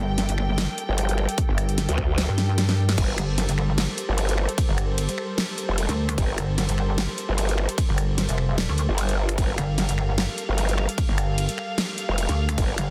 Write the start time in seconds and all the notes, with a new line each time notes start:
Already playing: G1 G3 G4 A4 A#4 G5
0.18 snare, closed hi-hat
0.29 G1, closed hi-hat
0.38 finger snap
0.58 snare, closed hi-hat
0.78 closed hi-hat
0.89 G1
0.98 closed hi-hat
1.09 closed hi-hat
1.18 finger snap
1.29 closed hi-hat
1.38 kick, closed hi-hat
1.49 G1
1.58 finger snap, closed hi-hat
1.69 closed hi-hat
1.78 snare, closed hi-hat
1.89 D2, closed hi-hat
1.98 finger snap, kick
2.18 snare, closed hi-hat
2.29 G2
2.38 snare, closed hi-hat
2.58 snare, closed hi-hat
2.69 snare, closed hi-hat
2.89 snare, closed hi-hat
2.98 G1 C5, kick, closed hi-hat, crash
3.18 G1, finger snap, closed hi-hat
3.38 snare, closed hi-hat, crash
3.49 G1, closed hi-hat
3.58 finger snap
3.78 snare, closed hi-hat, crash
3.98 closed hi-hat
4.09 G1
4.18 closed hi-hat, crash
4.29 closed hi-hat
4.38 finger snap
4.49 closed hi-hat
4.58 kick, closed hi-hat, crash
4.69 G1
4.78 finger snap, closed hi-hat
4.98 closed hi-hat, crash
5.09 closed hi-hat
5.18 finger snap
5.38 snare, closed hi-hat, crash
5.58 closed hi-hat
5.69 F1
5.78 closed hi-hat, crash
5.89 D2, closed hi-hat
6.09 finger snap, closed hi-hat
6.18 G1, kick, closed hi-hat, crash
6.38 G1, finger snap, closed hi-hat
6.58 snare, closed hi-hat, crash
6.69 G1, closed hi-hat
6.78 finger snap
6.98 snare, closed hi-hat, crash
7.18 closed hi-hat
7.29 G1
7.38 closed hi-hat, crash
7.49 closed hi-hat
7.58 finger snap
7.69 closed hi-hat
7.78 kick, closed hi-hat, crash
7.89 G1
7.98 finger snap, closed hi-hat
8.18 snare, closed hi-hat, crash
8.29 F1, closed hi-hat
8.38 finger snap
8.58 snare, closed hi-hat, crash
8.69 D2
8.78 closed hi-hat
8.89 G1
8.98 closed hi-hat, crash
9.09 closed hi-hat
9.29 finger snap, closed hi-hat
9.38 G1 F5, kick, closed hi-hat, crash
9.58 G1, finger snap, closed hi-hat
9.78 snare, closed hi-hat, crash
9.89 G1, closed hi-hat
9.98 finger snap
10.18 snare, closed hi-hat, crash
10.38 closed hi-hat
10.49 G1
10.58 closed hi-hat, crash
10.69 closed hi-hat
10.78 finger snap
10.89 closed hi-hat
10.98 kick, closed hi-hat, crash
11.09 G1
11.18 finger snap, closed hi-hat
11.38 closed hi-hat, crash
11.49 closed hi-hat
11.58 finger snap
11.78 snare, closed hi-hat, crash
11.98 closed hi-hat
12.09 F1
12.18 closed hi-hat, crash
12.29 D2, closed hi-hat
12.49 finger snap, closed hi-hat
12.58 G1, kick, closed hi-hat, crash
12.78 G1, finger snap, closed hi-hat